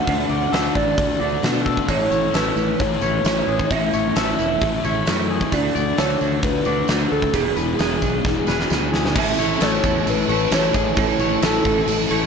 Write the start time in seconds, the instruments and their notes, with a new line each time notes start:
Already playing: clean electric guitar A4 D5
0.07 fingered electric bass D2, overdriven electric guitar D3 A3 D4 F#4, soft synth lead F#5, kick, open hi-hat
0.29 fingered electric bass D2, clean electric guitar D5
0.52 fingered electric bass D2, overdriven electric guitar D3 A3 D4 F#4, clean electric guitar A4, snare, open hi-hat
0.75 fingered electric bass A1, overdriven electric guitar A3 D4 F#4, soft synth lead D5, kick
0.98 fingered electric bass D2, distorted electric guitar D3 A3 D4, kick, open hi-hat
1.20 fingered electric bass D2, overdriven electric guitar A3 D4 F#4, clean electric guitar D5
1.43 fingered electric bass B2, overdriven electric guitar D3 A3 D4 F#4, snare, open hi-hat
1.66 clean electric guitar A4, kick
1.77 kick
1.88 fingered electric bass A1, overdriven electric guitar A2 E3 A3 C#4 E4, soft synth lead C#5, kick, open hi-hat, tambourine
2.11 fingered electric bass A1, clean electric guitar C#5, tambourine
2.33 fingered electric bass A1, distorted electric guitar A2, overdriven electric guitar E3 A3 C#4 E4, clean electric guitar A4, soft synth lead B4, snare, open hi-hat, tambourine
2.56 fingered electric bass A1, overdriven electric guitar A3 C#4 E4, tambourine
2.79 fingered electric bass A1, distorted electric guitar A2 E3 A3, soft synth lead C#5, kick, open hi-hat, tambourine
3.01 fingered electric bass A1, distorted electric guitar E3, overdriven electric guitar C#4 E4, clean electric guitar C#5, tambourine
3.05 overdriven electric guitar A3
3.24 fingered electric bass A1, distorted electric guitar A2, overdriven electric guitar E3 A3 C#4, snare, open hi-hat, tambourine
3.28 overdriven electric guitar E4
3.47 fingered electric bass A1, clean electric guitar G#4
3.59 kick
3.70 fingered electric bass A1, overdriven electric guitar A2 E3 A3 C#4 E4, soft synth lead E5, kick, open hi-hat, tambourine
3.93 fingered electric bass A1, clean electric guitar C#5, tambourine
4.16 fingered electric bass A1, distorted electric guitar A2, overdriven electric guitar E3 A3 C#4 E4, clean electric guitar A4, soft synth lead E5, snare, open hi-hat, tambourine
4.38 fingered electric bass E1, overdriven electric guitar A3 C#4 E4, tambourine
4.61 fingered electric bass A1, distorted electric guitar A2 E3 A3, kick, open hi-hat, tambourine
4.83 fingered electric bass A1, distorted electric guitar E3, overdriven electric guitar A3 C#4 E4, clean electric guitar C#5, tambourine
5.06 fingered electric bass F#2, distorted electric guitar A2, overdriven electric guitar E3 A3 C#4 E4, snare, open hi-hat, tambourine
5.30 clean electric guitar G#4
5.41 kick
5.51 fingered electric bass D2, overdriven electric guitar D3 A3 D4 F#4, soft synth lead D5, kick, open hi-hat, tambourine
5.75 fingered electric bass D2, clean electric guitar D5, tambourine
5.97 fingered electric bass D2, overdriven electric guitar D3 A3 D4 F#4, clean electric guitar A4, soft synth lead C#5, snare, open hi-hat, tambourine
6.20 fingered electric bass D2, overdriven electric guitar A3 D4 F#4, tambourine
6.42 fingered electric bass D2, distorted electric guitar D3 A3 D4, soft synth lead B4, kick, open hi-hat, tambourine
6.65 fingered electric bass D2, overdriven electric guitar A3 D4 F#4, clean electric guitar D5, tambourine
6.87 fingered electric bass D2, overdriven electric guitar D3 A3 D4 F#4, snare, open hi-hat, tambourine
7.12 fingered electric bass D2, soft synth lead A4, clean electric guitar A4
7.22 kick
7.33 fingered electric bass E1, distorted electric guitar E2 B2, overdriven electric guitar E3 B3 D4 G#4, soft synth lead G#4, kick, open hi-hat, tambourine
7.56 fingered electric bass E1, clean electric guitar B4, tambourine
7.79 fingered electric bass E1, distorted electric guitar E2 B2, overdriven electric guitar E3 B3 D4 G#4, clean electric guitar G#4, snare, open hi-hat, tambourine
8.02 fingered electric bass B1, overdriven electric guitar B3 D4 G#4, kick, tambourine
8.24 fingered electric bass E1, distorted electric guitar E2 B2 E3, kick, snare, tambourine
8.47 fingered electric bass E1, distorted electric guitar B2 E3, overdriven electric guitar B3 D4 G#4, clean electric guitar B4, snare, tambourine
8.60 snare
8.70 fingered electric bass D2, distorted electric guitar E2 B2, overdriven electric guitar E3 B3 D4 G#4, snare, tambourine
8.93 clean electric guitar G#4, snare, tambourine
9.05 snare
9.16 fingered electric bass A1, overdriven electric guitar A2 E3 A3 C#4 E4 A4, soft synth lead E5, kick, crash, tambourine
9.38 fingered electric bass A1, distorted electric guitar E3, overdriven electric guitar A3 C#4 E4 A4, clean electric guitar C#5, tambourine, crash
9.61 fingered electric bass A1, distorted electric guitar A2 E3, overdriven electric guitar A3 C#4 E4 A4, clean electric guitar A4, soft synth lead C#5, snare, tambourine, crash
9.83 fingered electric bass E2, distorted electric guitar E3, overdriven electric guitar A3 C#4 E4 A4, kick, tambourine, crash
10.06 fingered electric bass A1, soft synth lead B4, tambourine, crash
10.28 fingered electric bass A1, overdriven electric guitar A3 C#4 E4 A4, clean electric guitar C#5, crash
10.51 fingered electric bass A1, distorted electric guitar A2 E3, overdriven electric guitar A3 C#4 E4 A4, soft synth lead C#5, snare, tambourine, crash
10.74 fingered electric bass A1, distorted electric guitar E3 A3, clean electric guitar G#4, kick, tambourine, crash
10.96 fingered electric bass A1, overdriven electric guitar A2 E3 A3 C#4 E4 A4, soft synth lead C#5, kick, tambourine, crash
11.19 fingered electric bass A1, distorted electric guitar E3, overdriven electric guitar A3 C#4 E4 A4, clean electric guitar C#5, tambourine, crash
11.42 fingered electric bass A1, distorted electric guitar A2 E3, overdriven electric guitar A3 C#4 E4 A4, clean electric guitar A4, soft synth lead A4, snare, tambourine, crash
11.64 fingered electric bass A1, distorted electric guitar E3, overdriven electric guitar A3 C#4 E4 A4, kick, crash
11.87 fingered electric bass A1, tambourine, crash
12.09 fingered electric bass A1, overdriven electric guitar A3 C#4 E4 A4, clean electric guitar C#5, crash